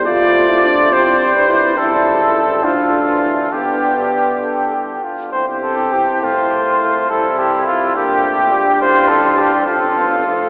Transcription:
<<
  \new Staff \with { instrumentName = "Cornet" } { \time 6/8 \key c \major \tempo 4. = 69 c''4. c''8. b'8. | a'4. a'4. | g'4. a'8 g'8 f'8 | c''8 a'8 g'8 c''4. |
a'8 g'8 f'8 g'4. | c''8 a'8 g'8 a'4. | }
  \new Staff \with { instrumentName = "Trumpet" } { \time 6/8 \key c \major d''4. c''4. | a'4. f'4. | g'2~ g'16 r8. | g'4. f'4. |
e'4. g'4. | f'4. f'4. | }
  \new Staff \with { instrumentName = "French horn" } { \time 6/8 \key c \major f'8. e'16 d'8 c'8. d'16 e'8 | e'4. d'4. | b2~ b8 r8 | e'2. |
c'4. d'4.~ | d'4. c'8 b8 a8 | }
  \new Staff \with { instrumentName = "Trombone" } { \clef bass \time 6/8 \key c \major a4. g4. | g4. f8. e8. | d2~ d8 r8 | c'4. a4. |
g4. bes8 a8 g8~ | g4. f4. | }
  \new Staff \with { instrumentName = "Tuba" } { \clef bass \time 6/8 \key c \major f,4. c,4. | cis,4. d,4. | g,2~ g,8 r8 | c,4. c,4. |
c,4. bes,,4. | a,,4. f,,4. | }
>>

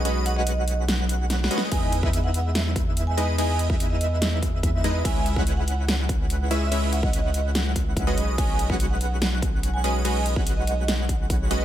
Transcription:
<<
  \new Staff \with { instrumentName = "Vibraphone" } { \time 4/4 \key b \major \tempo 4 = 144 r8 fis''16 dis''4 r2 r16 | gis''16 gis''16 r8. fis''16 fis''16 r4. gis''8 r16 | gis''8 r8. dis''4 r4. r16 | gis''16 gis''16 r8. fis''16 fis''16 r2 r16 |
r8 fis''16 dis''4 r2 r16 | gis''16 gis''16 r8. fis''16 fis''16 r4. gis''8 r16 | gis''8 r8. dis''4 r4. r16 | }
  \new Staff \with { instrumentName = "Digital synth lead" } { \time 4/4 \key b \major dis''8. fis''2~ fis''8. dis''8 | dis''8. e''2~ e''8. dis''8 | dis''8. e''2~ e''8. dis''8 | e''8. fis''2~ fis''8. e''8 |
e''8. fis''2~ fis''8 dis''8. | dis''8. fis''2~ fis''8. dis''8 | dis''8. fis''2~ fis''8. dis''8 | }
  \new Staff \with { instrumentName = "Supersaw synth" } { \time 4/4 \key b \major <gis cis' fis' b' dis''>8. <gis cis' fis' b' fis''>2~ <gis cis' fis' b' fis''>8. <gis cis' fis' b' dis''>8 | <gis dis' e' b' dis''>8. <gis dis' e' b' e''>2~ <gis dis' e' b' e''>8. <gis dis' e' b' dis''>8 | <gis dis' e' b' dis''>8. <gis dis' e' b' e''>2~ <gis dis' e' b' e''>8. <gis dis' e' b' dis''>8 | <gis cis' e' b' e''>8. <gis cis' e' b' fis''>2~ <gis cis' e' b' fis''>8. <gis cis' e' b' e''>8 |
<gis cis' e' b' e''>8. <gis cis' e' b' fis''>2~ <gis cis' e' b' fis''>8 <gis cis' fis' b' dis''>8. | <gis cis' fis' b' dis''>8. <gis cis' fis' b' fis''>2~ <gis cis' fis' b' fis''>8. <gis cis' fis' b' dis''>8 | <gis cis' fis' b' dis''>8. <gis cis' fis' b' fis''>2~ <gis cis' fis' b' fis''>8. <gis cis' fis' b' dis''>8 | }
  \new Staff \with { instrumentName = "Sub bass" } { \clef bass \time 4/4 \key b \major b,,2.~ b,,8 r8 | e,1~ | e,1 | cis,1~ |
cis,2.~ cis,8 b,,8~ | b,,1~ | b,,1 | }
  \new DrumStaff \with { instrumentName = "Drums" } \drummode { \time 4/4 hh8 hh8 hh8 hh8 <hh sn>8 hh8 \tuplet 3/2 { <hh sn>16 r16 sn16 hh16 sn16 r16 } | <cymc hh bd>8 hh16 bd16 hh8 hh8 <hh sn>8 <hh bd>8 hh8 hh8 | <cymc hh>8 hh16 bd16 hh8 hh8 <hh sn>8 <hh bd>8 <hh bd>8 hh8 | <cymc hh bd>8 hh16 bd16 hh8 hh8 <hh sn>8 <hh bd>8 hh8 hh8 |
<cymc hh>8 hh16 bd16 hh8 hh8 <hh sn>8 <hh bd>8 <hh bd>8 hh8 | <cymc hh bd>8 hh16 bd16 hh8 hh8 <hh sn>8 <hh bd>8 hh8 hh8 | <cymc hh>8 hh16 bd16 hh8 hh8 <hh sn>8 <hh bd>8 <hh bd>8 hh8 | }
>>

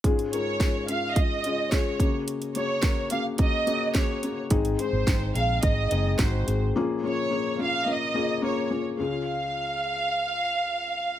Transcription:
<<
  \new Staff \with { instrumentName = "Violin section" } { \time 4/4 \key des \major \tempo 4 = 107 r8 des''4 f''8 ees''4 des''8. r16 | r8 des''4 f''8 ees''4 des''8. r16 | r8 c''4 f''8 ees''4 c''8. r16 | r8 des''4 f''8 ees''4 des''8. r16 |
f''1 | }
  \new Staff \with { instrumentName = "Felt piano" } { \time 4/4 \key des \major <aes des' f' aes'>8 <aes des' f' bes'>8 <aes des' f' aes'>8 <aes des' f' aes'>8 <aes des' f' aes'>8 <aes des' f' aes'>8 <aes des' f' aes'>8 <bes des' ges' aes'>8~ | <bes des' ges' aes'>8 <bes des' ges' aes'>8 <bes des' ges' bes'>8 <bes des' ges' aes'>8 <bes des' ges' aes'>8 <bes des' ges' aes'>8 <bes des' ges' aes'>8 <bes des' ges' aes'>8 | <aes c' ees' aes'>8 <aes c' ees' aes'>8 <aes c' ees' aes'>8 <aes c' ees' aes'>8 <aes c' ees' aes'>8 <aes c' ees' aes'>8 <aes c' ees' ges'>8 <aes c' ees' aes'>8 | <bes des' f' aes'>8 <bes des' f' aes'>8 <bes des' f' aes'>8 <bes des' f' aes'>8 <bes des' f' bes'>8 <bes des' f' aes'>8 <bes des' f' aes'>8 <bes des' f' aes'>8 |
<aes des' f' aes'>1 | }
  \new Staff \with { instrumentName = "Felt piano" } { \clef bass \time 4/4 \key des \major aes,4. r2 des8~ | des4 r2. | <aes, ees>4. r2 r8 | <bes, f>4. r2 r8 |
des,1 | }
  \new Staff \with { instrumentName = "Fingered electric bass" } { \clef bass \time 4/4 \key des \major r1 | r1 | aes,,8 r16 aes,,16 aes,,8 bes,,8 aes,,8 ges,,8 aes,,8 aes,,8 | r1 |
r1 | }
  \new DrumStaff \with { instrumentName = "Drums" } \drummode { \time 4/4 <hh bd>16 hh16 hh8 <hh bd sn>8 hh8 <hh bd>8 hh8 <hh bd sn>8 <hh bd>8 | hh16 hh16 hh8 <hh bd sn>8 hh8 <hh bd>8 hh8 <hh bd sn>8 hh8 | <hh bd>16 hh16 hh8 <hh bd sn>8 hh8 <hh bd>8 hh8 <hh bd sn>8 hh8 | r4 r4 r4 r4 |
r4 r4 r4 r4 | }
>>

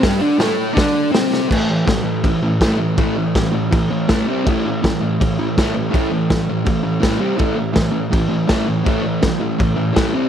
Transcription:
<<
  \new Staff \with { instrumentName = "Distorted electric guitar" } { \clef bass \time 4/4 \key g \lydian \tempo 4 = 163 <g, g>8 <d d'>8 <a, a>4 <d d'>4 <c c'>4 | <a, e a>8 <a, e>8 <a, e>8 <a, e>8 <a, e>8 <a, e>8 <a, e a>8 <a, e>8 | <a, e a>8 <a, e>8 <a, e>8 <a, e>8 <a, e>8 <a, e>8 <a, e a>8 <c g c'>8 | <a, e a>8 <a, e>8 <a, e>8 <a, e>8 <a, e>8 <a, e>8 <a, e a>8 <a, e>8 |
<a, e a>8 <a, e>8 <a, e>8 <a, e>8 <a, e>8 <a, e>8 <a, e a>8 <c g c'>8 | <a, e a>8 <a, e>8 <a, e>8 <a, e>8 <a, e>8 <a, e>8 <a, e a>8 <a, e>8 | <a, e a>8 <a, e>8 <a, e>8 <a, e>8 <a, e>8 <a, e>8 <a, e a>8 <c g c'>8 | }
  \new DrumStaff \with { instrumentName = "Drums" } \drummode { \time 4/4 <hho bd sn>4 <hho sn>4 <hho bd sn>4 <hho sn>8 sn8 | <cymc bd>4 <cymc bd sn>4 <cymc bd>4 <cymc bd sn>4 | <cymc bd>4 <cymc bd sn>4 <cymc bd>4 <cymc bd sn>4 | <cymc bd>4 <cymc bd sn>4 <cymc bd>4 <cymc bd sn>4 |
<cymc bd>4 <cymc bd sn>4 <cymc bd>4 <cymc bd sn>4 | <cymc bd>4 <cymc bd sn>4 <cymc bd>4 <cymc bd sn>4 | <cymc bd>4 <cymc bd sn>4 <cymc bd>4 <cymc bd sn>4 | }
>>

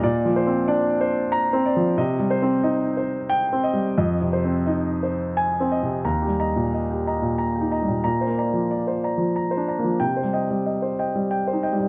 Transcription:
<<
  \new Staff \with { instrumentName = "Grand piano" } { \time 3/4 \key ees \major \tempo 4 = 92 << { r2 bes''4 | r2 g''4 | r2 aes''4 | bes''8 r2 r8 |
bes''8 r2 r8 | g''8 r2 r8 | } \\ { d''8 c''8 d''8 c''8. r16 d''8 | ees''8 c''8 ees''8 c''8. r16 ees''8 | ees''8 c''8 ees''8 c''8. r16 ees''8 | r16 g'16 <ees'' bes''>16 bes,16 ees''16 g'16 <ees'' bes''>16 bes,16 bes''16 g'16 <ees'' bes''>16 bes,16 |
r16 c''16 <d'' bes''>16 f16 d''16 c''16 <d'' bes''>16 f16 bes''16 c''16 <d'' bes''>16 f16 | r16 c''16 <ees'' g''>16 g16 ees''16 c''16 <ees'' g''>16 g16 g''16 c''16 <ees'' g''>16 g16 | } >> }
  \new Staff \with { instrumentName = "Grand piano" } { \clef bass \time 3/4 \key ees \major \tuplet 3/2 { bes,8 f8 c'8 } d'8 r8 \tuplet 3/2 { r8 c'8 f8 } | \tuplet 3/2 { c8 g8 c'8 } ees'8 r8 \tuplet 3/2 { r8 c'8 g8 } | \tuplet 3/2 { f,8 c8 c'8 } ees'8 r8 \tuplet 3/2 { r8 c'8 c8 } | \tuplet 3/2 { ees,8 g4 } r4 \tuplet 3/2 { r8 ees'8 g8 } |
\tuplet 3/2 { bes,8 bes4 } r4 \tuplet 3/2 { r8 d'8 bes8 } | \tuplet 3/2 { c8 g4 } r4 \tuplet 3/2 { r8 ees'8 g8 } | }
>>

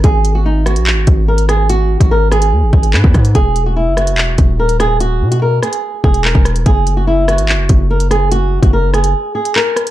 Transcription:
<<
  \new Staff \with { instrumentName = "Nylon-string guitar" } { \time 4/4 \key gis \minor \tempo 4 = 145 gis'8. fis'16 dis'8 fis'4. ais'8 gis'8 | fis'8. fis'16 ais'8 gis'4 gis'8 b'4 | gis'8. fis'16 e'8 fis'4. ais'8 gis'8 | fis'8. fis'16 ais'8 gis'4 gis'8 ais'4 |
gis'8. fis'16 e'8 fis'4. ais'8 gis'8 | fis'8. fis'16 ais'8 gis'4 gis'8 ais'4 | }
  \new Staff \with { instrumentName = "808-style bass" } { \clef bass \time 4/4 \key gis \minor gis,,4.~ gis,,16 ais,,16. gis,,16. gis,,4.~ | gis,,8. gis,,4~ gis,,16 dis,16 gis,,16 gis,,8 gis,16 dis,16 gis,8 | e,,4~ e,,16 fis,,8~ fis,,32 e,,8~ e,,32 dis,,4.~ | dis,,8 b,4 r4 e,,8. e,,8. |
fis,,4.~ fis,,16 gis,,16. fis,,16. fis,,4.~ | fis,,8. fis,,4~ fis,,16 r2 | }
  \new DrumStaff \with { instrumentName = "Drums" } \drummode { \time 4/4 <hh bd>8 hh8 r8 <hh ss>16 hh16 hc8 <hh bd>8 r16 hh16 <hh ss>8 | hh8. <hh bd>16 r8 <hh ss>16 hh16 r8 bd16 hh16 hc16 bd16 <hh bd ss>16 hh16 | <hh bd>8 hh8 r8 <hh ss>16 hh16 hc8 <hh bd>8 r16 hh16 <hh ss>8 | hh8. hh16 r8 <hh ss>16 hh16 r8 bd16 hh16 hc16 bd16 <hh ss>16 hh16 |
<hh bd>8 hh8 r8 <hh ss>16 hh16 hc8 <hh bd>8 r16 hh16 <hh ss>8 | hh8. <hh bd>16 r8 <hh ss>16 hh16 r8. hh16 hc8 <hh ss>16 hh16 | }
>>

